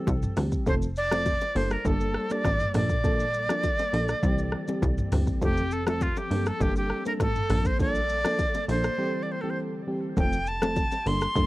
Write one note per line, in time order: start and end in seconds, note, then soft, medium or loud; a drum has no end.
0.00 0.33 E3 medium
0.00 0.33 G3 medium
0.00 0.33 C4 medium
0.00 0.33 G4 medium
0.00 0.37 A4 loud
0.07 0.28 C2 loud
0.07 kick loud
0.07 high bongo medium
0.07 shaker medium
0.22 mid tom loud
0.22 shaker soft
0.36 0.58 D2 medium
0.36 0.64 E3 medium
0.36 0.64 G3 medium
0.36 0.64 C4 medium
0.36 0.64 G4 medium
0.36 cross-stick medium
0.36 open hi-hat medium
0.36 low bongo medium
0.36 shaker medium
0.52 kick medium
0.52 shaker medium
0.66 1.38 F1 loud
0.66 0.87 F3 medium
0.66 0.87 A3 medium
0.66 0.87 C4 medium
0.66 0.87 A4 loud
0.66 0.74 C5 loud
0.66 kick loud
0.66 low conga medium
0.66 shaker medium
0.82 shaker medium
0.96 1.58 D5 loud
0.96 shaker medium
1.11 1.31 F3 medium
1.11 1.31 A3 medium
1.11 1.31 C4 medium
1.11 1.31 A4 medium
1.11 cross-stick loud
1.11 high bongo medium
1.11 low bongo medium
1.11 shaker medium
1.26 kick medium
1.26 high bongo medium
1.26 low conga medium
1.26 shaker medium
1.41 low bongo medium
1.41 shaker medium
1.55 1.77 G1 loud
1.55 1.76 G3 medium
1.55 2.73 G3 medium
1.55 1.76 A#3 medium
1.55 4.20 A#3 medium
1.55 1.76 D4 medium
1.55 2.73 A4 medium
1.55 1.76 A4 medium
1.55 1.74 C5 loud
1.55 open hi-hat medium
1.71 1.88 A#4 medium
1.71 cross-stick loud
1.71 shaker medium
1.85 2.17 G1 loud
1.85 2.27 G3 medium
1.85 2.27 A#3 medium
1.85 2.27 D4 medium
1.85 2.27 A4 loud
1.85 2.33 A4 loud
1.85 kick loud
1.85 low conga medium
1.85 shaker medium
2.01 shaker soft
2.15 cross-stick loud
2.30 2.50 G3 medium
2.30 2.50 A#3 medium
2.30 2.50 D4 medium
2.30 2.50 A4 medium
2.30 2.75 D5 loud
2.30 low bongo medium
2.30 shaker medium
2.45 2.66 A1 loud
2.45 kick loud
2.45 cross-stick loud
2.45 high bongo medium
2.45 shaker medium
2.60 mid tom loud
2.60 shaker soft
2.74 3.49 A#1 loud
2.74 4.21 D3 medium
2.74 2.95 F3 medium
2.74 2.95 A#3 medium
2.74 2.95 D4 medium
2.74 4.21 A4 medium
2.74 2.95 A4 medium
2.74 5.09 D5 loud
2.74 cross-stick medium
2.74 mid tom loud
2.74 open hi-hat medium
2.74 low bongo medium
2.74 shaker medium
2.89 kick loud
2.89 shaker medium
3.04 3.24 F3 loud
3.04 3.24 A#3 medium
3.04 3.25 D4 medium
3.04 3.25 A4 loud
3.04 kick loud
3.04 low conga medium
3.04 shaker medium
3.20 shaker medium
3.34 shaker medium
3.49 3.69 F3 medium
3.49 3.69 A#3 medium
3.49 3.69 D4 medium
3.49 3.69 A4 medium
3.49 cross-stick loud
3.49 high bongo medium
3.49 low bongo medium
3.49 shaker medium
3.63 kick medium
3.63 high bongo medium
3.63 low conga medium
3.63 shaker medium
3.79 low bongo medium
3.79 shaker medium
3.93 4.14 A#1 loud
3.93 4.13 F3 medium
3.93 4.14 A#3 medium
3.93 4.14 D4 medium
3.93 4.14 A4 medium
3.93 open hi-hat medium
4.08 cross-stick loud
4.08 shaker medium
4.23 4.55 C2 loud
4.23 4.64 E3 loud
4.23 5.41 E3 medium
4.23 4.64 G3 medium
4.23 6.29 C4 medium
4.23 4.64 C4 medium
4.23 5.41 G4 medium
4.23 4.65 G4 loud
4.23 kick loud
4.23 low conga medium
4.23 shaker medium
4.38 shaker soft
4.52 cross-stick loud
4.68 5.08 E3 medium
4.68 5.09 G3 medium
4.68 5.09 C4 medium
4.68 5.09 G4 medium
4.68 low bongo medium
4.68 shaker medium
4.82 5.03 C2 loud
4.82 kick loud
4.82 high bongo medium
4.82 shaker medium
4.98 mid tom loud
4.98 shaker soft
5.12 5.33 D2 loud
5.12 5.39 E3 medium
5.12 5.39 G3 medium
5.12 5.39 C4 medium
5.12 5.40 G4 medium
5.12 cross-stick medium
5.12 mid tom loud
5.12 open hi-hat medium
5.12 low bongo medium
5.12 shaker medium
5.27 kick loud
5.27 shaker medium
5.41 6.13 F1 loud
5.41 5.62 F3 loud
5.41 5.62 A3 medium
5.41 5.62 C4 medium
5.41 5.74 G4 loud
5.41 7.48 A4 medium
5.41 5.62 A4 loud
5.41 kick loud
5.41 low conga medium
5.41 shaker medium
5.57 shaker medium
5.71 5.88 A4 loud
5.71 shaker medium
5.87 6.06 F3 medium
5.87 6.06 A3 medium
5.87 6.07 C4 medium
5.87 6.07 A4 medium
5.87 6.04 A4 medium
5.87 cross-stick loud
5.87 high bongo medium
5.87 low bongo medium
5.87 shaker medium
6.01 6.19 F4 medium
6.01 kick medium
6.01 high bongo medium
6.01 low conga medium
6.01 shaker medium
6.16 6.49 G4 medium
6.16 low bongo medium
6.16 shaker medium
6.31 6.52 G1 loud
6.31 6.51 G3 medium
6.31 7.48 G3 medium
6.31 8.95 A#3 medium
6.31 6.51 A#3 medium
6.31 6.51 D4 medium
6.31 6.51 A4 medium
6.31 open hi-hat medium
6.46 6.63 A4 medium
6.46 cross-stick loud
6.46 shaker medium
6.60 6.92 G1 loud
6.60 7.02 G3 loud
6.60 7.02 A#3 medium
6.60 7.02 D4 medium
6.60 6.77 G4 loud
6.60 7.02 A4 loud
6.60 kick loud
6.60 low conga medium
6.60 shaker medium
6.76 7.04 G4 medium
6.76 shaker soft
6.90 cross-stick loud
7.05 7.25 G3 medium
7.05 7.25 A#3 medium
7.05 7.25 D4 medium
7.05 7.26 A4 medium
7.05 7.13 A#4 loud
7.05 low bongo medium
7.05 shaker medium
7.20 7.41 A1 loud
7.20 7.68 A4 loud
7.20 kick loud
7.20 cross-stick loud
7.20 high bongo medium
7.20 shaker medium
7.35 mid tom loud
7.35 shaker soft
7.49 8.24 A#1 loud
7.49 8.97 D3 medium
7.49 7.70 F3 medium
7.49 7.70 A#3 medium
7.49 7.70 D4 medium
7.49 8.97 A4 medium
7.49 7.70 A4 medium
7.49 cross-stick loud
7.49 mid tom loud
7.49 open hi-hat medium
7.49 low bongo medium
7.49 shaker medium
7.65 7.80 C5 loud
7.65 kick loud
7.65 shaker medium
7.79 8.00 F3 medium
7.79 8.00 A#3 medium
7.79 8.00 D4 medium
7.79 8.00 A4 loud
7.79 8.65 D5 loud
7.79 kick loud
7.79 low conga medium
7.79 shaker medium
7.95 shaker medium
8.09 shaker medium
8.24 8.44 F3 medium
8.24 8.44 A#3 medium
8.24 8.44 D4 medium
8.24 8.44 A4 medium
8.24 cross-stick loud
8.24 high bongo medium
8.24 low bongo medium
8.24 shaker medium
8.39 kick medium
8.39 high bongo medium
8.39 low conga medium
8.39 shaker medium
8.54 low bongo medium
8.54 shaker medium
8.68 8.89 A#1 medium
8.68 8.89 F3 medium
8.68 8.89 A#3 medium
8.68 8.89 D4 medium
8.68 8.89 A4 medium
8.68 9.24 C5 loud
8.68 open hi-hat medium
8.68 shaker medium
8.83 cross-stick loud
8.83 shaker medium
8.98 9.39 E3 medium
8.98 10.16 E3 medium
8.98 9.40 G3 medium
8.98 10.16 C4 medium
8.98 9.40 C4 medium
8.98 10.16 G4 medium
8.98 9.40 G4 loud
9.23 9.33 D5 medium
9.32 9.43 C5 medium
9.41 9.84 E3 medium
9.41 9.84 G3 medium
9.41 9.84 C4 medium
9.41 9.84 G4 medium
9.41 9.52 A4 medium
9.50 9.58 C5 medium
9.87 10.15 E3 medium
9.87 10.15 G3 medium
9.87 10.15 C4 medium
9.87 10.15 G4 medium
10.17 10.88 F1 loud
10.17 10.37 F3 medium
10.17 10.37 A3 medium
10.17 10.37 C4 medium
10.17 10.38 A4 loud
10.17 10.50 G5 loud
10.17 kick loud
10.17 low conga medium
10.17 shaker medium
10.33 shaker medium
10.47 11.09 A5 loud
10.47 shaker medium
10.62 10.82 F3 medium
10.62 10.82 A3 medium
10.62 10.82 C4 medium
10.62 10.82 A4 medium
10.62 cross-stick loud
10.62 high bongo medium
10.62 low bongo loud
10.62 shaker medium
10.76 kick medium
10.76 high bongo medium
10.76 low conga medium
10.76 shaker medium
10.92 low bongo medium
10.92 shaker medium
11.06 11.27 G1 loud
11.06 11.26 G3 medium
11.06 11.26 A#3 medium
11.06 11.27 D4 medium
11.06 11.27 A4 medium
11.06 11.47 C6 loud
11.06 open hi-hat medium
11.21 cross-stick loud
11.21 shaker medium
11.35 11.47 G1 loud
11.35 11.47 G3 loud
11.35 11.47 A#3 medium
11.35 11.47 D4 medium
11.35 11.47 A4 loud
11.35 kick loud
11.35 low conga medium
11.35 shaker medium